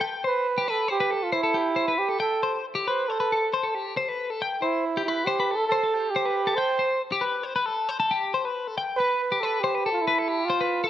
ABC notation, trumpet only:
X:1
M:5/4
L:1/16
Q:1/4=137
K:C
V:1 name="Trumpet"
z2 B4 A2 G3 F E6 G2 | A4 z2 c2 A4 z8 | z2 E4 E2 G3 A A4 G4 | c4 z16 |
z2 B4 A2 G3 F E4 F4 |]